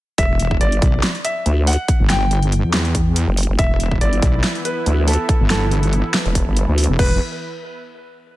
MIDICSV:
0, 0, Header, 1, 6, 480
1, 0, Start_track
1, 0, Key_signature, 1, "minor"
1, 0, Tempo, 425532
1, 205, Time_signature, 4, 2, 24, 8
1, 9437, End_track
2, 0, Start_track
2, 0, Title_t, "Grand piano"
2, 0, Program_c, 0, 0
2, 205, Note_on_c, 0, 76, 101
2, 599, Note_off_c, 0, 76, 0
2, 685, Note_on_c, 0, 74, 91
2, 1318, Note_off_c, 0, 74, 0
2, 1406, Note_on_c, 0, 76, 96
2, 1799, Note_off_c, 0, 76, 0
2, 1886, Note_on_c, 0, 78, 94
2, 2279, Note_off_c, 0, 78, 0
2, 2366, Note_on_c, 0, 79, 94
2, 3958, Note_off_c, 0, 79, 0
2, 4045, Note_on_c, 0, 76, 103
2, 4439, Note_off_c, 0, 76, 0
2, 4526, Note_on_c, 0, 74, 90
2, 5158, Note_off_c, 0, 74, 0
2, 5246, Note_on_c, 0, 71, 92
2, 5639, Note_off_c, 0, 71, 0
2, 5726, Note_on_c, 0, 69, 91
2, 6119, Note_off_c, 0, 69, 0
2, 6206, Note_on_c, 0, 69, 91
2, 7798, Note_off_c, 0, 69, 0
2, 7886, Note_on_c, 0, 71, 98
2, 8068, Note_off_c, 0, 71, 0
2, 9437, End_track
3, 0, Start_track
3, 0, Title_t, "Analog synth pad"
3, 0, Program_c, 1, 89
3, 4045, Note_on_c, 1, 52, 82
3, 4045, Note_on_c, 1, 59, 74
3, 4045, Note_on_c, 1, 64, 88
3, 7847, Note_off_c, 1, 52, 0
3, 7847, Note_off_c, 1, 59, 0
3, 7847, Note_off_c, 1, 64, 0
3, 7885, Note_on_c, 1, 83, 83
3, 7886, Note_on_c, 1, 52, 75
3, 7886, Note_on_c, 1, 59, 67
3, 7886, Note_on_c, 1, 71, 70
3, 7886, Note_on_c, 1, 76, 69
3, 8109, Note_off_c, 1, 52, 0
3, 8109, Note_off_c, 1, 59, 0
3, 8109, Note_off_c, 1, 71, 0
3, 8109, Note_off_c, 1, 76, 0
3, 8109, Note_off_c, 1, 83, 0
3, 9437, End_track
4, 0, Start_track
4, 0, Title_t, "Wobble bass"
4, 0, Program_c, 2, 39
4, 205, Note_on_c, 2, 28, 98
4, 668, Note_off_c, 2, 28, 0
4, 925, Note_on_c, 2, 35, 92
4, 1148, Note_off_c, 2, 35, 0
4, 2255, Note_on_c, 2, 31, 102
4, 2954, Note_off_c, 2, 31, 0
4, 2975, Note_on_c, 2, 40, 92
4, 3674, Note_off_c, 2, 40, 0
4, 4045, Note_on_c, 2, 28, 95
4, 4508, Note_off_c, 2, 28, 0
4, 4765, Note_on_c, 2, 35, 99
4, 4987, Note_off_c, 2, 35, 0
4, 6096, Note_on_c, 2, 31, 107
4, 6795, Note_off_c, 2, 31, 0
4, 7776, Note_on_c, 2, 28, 94
4, 7868, Note_off_c, 2, 28, 0
4, 7885, Note_on_c, 2, 28, 98
4, 8108, Note_off_c, 2, 28, 0
4, 9437, End_track
5, 0, Start_track
5, 0, Title_t, "Wobble bass"
5, 0, Program_c, 3, 39
5, 685, Note_on_c, 3, 31, 98
5, 907, Note_off_c, 3, 31, 0
5, 1645, Note_on_c, 3, 38, 98
5, 1994, Note_off_c, 3, 38, 0
5, 3695, Note_on_c, 3, 30, 97
5, 3914, Note_off_c, 3, 30, 0
5, 3935, Note_on_c, 3, 30, 98
5, 4028, Note_off_c, 3, 30, 0
5, 4525, Note_on_c, 3, 31, 102
5, 4748, Note_off_c, 3, 31, 0
5, 5485, Note_on_c, 3, 38, 103
5, 5834, Note_off_c, 3, 38, 0
5, 7055, Note_on_c, 3, 28, 100
5, 7274, Note_off_c, 3, 28, 0
5, 7295, Note_on_c, 3, 31, 100
5, 7515, Note_off_c, 3, 31, 0
5, 7535, Note_on_c, 3, 38, 97
5, 7755, Note_off_c, 3, 38, 0
5, 9437, End_track
6, 0, Start_track
6, 0, Title_t, "Drums"
6, 205, Note_on_c, 9, 36, 116
6, 205, Note_on_c, 9, 42, 86
6, 318, Note_off_c, 9, 36, 0
6, 318, Note_off_c, 9, 42, 0
6, 445, Note_on_c, 9, 42, 57
6, 558, Note_off_c, 9, 42, 0
6, 575, Note_on_c, 9, 36, 64
6, 685, Note_on_c, 9, 42, 56
6, 688, Note_off_c, 9, 36, 0
6, 798, Note_off_c, 9, 42, 0
6, 815, Note_on_c, 9, 42, 39
6, 925, Note_off_c, 9, 42, 0
6, 925, Note_on_c, 9, 36, 112
6, 925, Note_on_c, 9, 42, 58
6, 1038, Note_off_c, 9, 36, 0
6, 1038, Note_off_c, 9, 42, 0
6, 1165, Note_on_c, 9, 38, 124
6, 1165, Note_on_c, 9, 42, 86
6, 1278, Note_off_c, 9, 38, 0
6, 1278, Note_off_c, 9, 42, 0
6, 1296, Note_on_c, 9, 42, 40
6, 1405, Note_off_c, 9, 42, 0
6, 1405, Note_on_c, 9, 42, 89
6, 1518, Note_off_c, 9, 42, 0
6, 1645, Note_on_c, 9, 42, 84
6, 1758, Note_off_c, 9, 42, 0
6, 1885, Note_on_c, 9, 46, 100
6, 1950, Note_on_c, 9, 42, 66
6, 1998, Note_off_c, 9, 46, 0
6, 2063, Note_off_c, 9, 42, 0
6, 2125, Note_on_c, 9, 36, 123
6, 2125, Note_on_c, 9, 42, 88
6, 2238, Note_off_c, 9, 36, 0
6, 2238, Note_off_c, 9, 42, 0
6, 2366, Note_on_c, 9, 38, 64
6, 2366, Note_on_c, 9, 42, 60
6, 2478, Note_off_c, 9, 38, 0
6, 2478, Note_off_c, 9, 42, 0
6, 2605, Note_on_c, 9, 42, 60
6, 2718, Note_off_c, 9, 42, 0
6, 2735, Note_on_c, 9, 42, 40
6, 2845, Note_off_c, 9, 42, 0
6, 2845, Note_on_c, 9, 42, 57
6, 2958, Note_off_c, 9, 42, 0
6, 3085, Note_on_c, 9, 38, 126
6, 3085, Note_on_c, 9, 42, 82
6, 3198, Note_off_c, 9, 38, 0
6, 3198, Note_off_c, 9, 42, 0
6, 3215, Note_on_c, 9, 42, 41
6, 3325, Note_off_c, 9, 42, 0
6, 3325, Note_on_c, 9, 36, 62
6, 3325, Note_on_c, 9, 42, 85
6, 3438, Note_off_c, 9, 36, 0
6, 3438, Note_off_c, 9, 42, 0
6, 3565, Note_on_c, 9, 42, 91
6, 3678, Note_off_c, 9, 42, 0
6, 3805, Note_on_c, 9, 46, 93
6, 3870, Note_on_c, 9, 42, 68
6, 3918, Note_off_c, 9, 46, 0
6, 3983, Note_off_c, 9, 42, 0
6, 4045, Note_on_c, 9, 36, 126
6, 4045, Note_on_c, 9, 42, 84
6, 4158, Note_off_c, 9, 36, 0
6, 4158, Note_off_c, 9, 42, 0
6, 4285, Note_on_c, 9, 42, 56
6, 4398, Note_off_c, 9, 42, 0
6, 4415, Note_on_c, 9, 36, 68
6, 4525, Note_on_c, 9, 42, 59
6, 4528, Note_off_c, 9, 36, 0
6, 4638, Note_off_c, 9, 42, 0
6, 4655, Note_on_c, 9, 42, 38
6, 4765, Note_off_c, 9, 42, 0
6, 4765, Note_on_c, 9, 36, 119
6, 4765, Note_on_c, 9, 42, 56
6, 4878, Note_off_c, 9, 36, 0
6, 4878, Note_off_c, 9, 42, 0
6, 5005, Note_on_c, 9, 38, 127
6, 5005, Note_on_c, 9, 42, 83
6, 5118, Note_off_c, 9, 38, 0
6, 5118, Note_off_c, 9, 42, 0
6, 5136, Note_on_c, 9, 42, 38
6, 5246, Note_off_c, 9, 42, 0
6, 5246, Note_on_c, 9, 42, 85
6, 5359, Note_off_c, 9, 42, 0
6, 5485, Note_on_c, 9, 42, 83
6, 5598, Note_off_c, 9, 42, 0
6, 5726, Note_on_c, 9, 46, 92
6, 5791, Note_on_c, 9, 42, 67
6, 5838, Note_off_c, 9, 46, 0
6, 5904, Note_off_c, 9, 42, 0
6, 5965, Note_on_c, 9, 36, 126
6, 5966, Note_on_c, 9, 42, 80
6, 6078, Note_off_c, 9, 36, 0
6, 6078, Note_off_c, 9, 42, 0
6, 6205, Note_on_c, 9, 38, 66
6, 6205, Note_on_c, 9, 42, 53
6, 6318, Note_off_c, 9, 38, 0
6, 6318, Note_off_c, 9, 42, 0
6, 6445, Note_on_c, 9, 42, 52
6, 6558, Note_off_c, 9, 42, 0
6, 6576, Note_on_c, 9, 42, 37
6, 6686, Note_off_c, 9, 42, 0
6, 6686, Note_on_c, 9, 42, 55
6, 6798, Note_off_c, 9, 42, 0
6, 6926, Note_on_c, 9, 38, 124
6, 6926, Note_on_c, 9, 42, 79
6, 7038, Note_off_c, 9, 38, 0
6, 7038, Note_off_c, 9, 42, 0
6, 7056, Note_on_c, 9, 42, 36
6, 7165, Note_on_c, 9, 36, 62
6, 7166, Note_off_c, 9, 42, 0
6, 7166, Note_on_c, 9, 42, 86
6, 7278, Note_off_c, 9, 36, 0
6, 7278, Note_off_c, 9, 42, 0
6, 7406, Note_on_c, 9, 42, 83
6, 7518, Note_off_c, 9, 42, 0
6, 7645, Note_on_c, 9, 46, 90
6, 7711, Note_on_c, 9, 42, 63
6, 7758, Note_off_c, 9, 46, 0
6, 7824, Note_off_c, 9, 42, 0
6, 7885, Note_on_c, 9, 36, 112
6, 7886, Note_on_c, 9, 49, 90
6, 7998, Note_off_c, 9, 36, 0
6, 7998, Note_off_c, 9, 49, 0
6, 9437, End_track
0, 0, End_of_file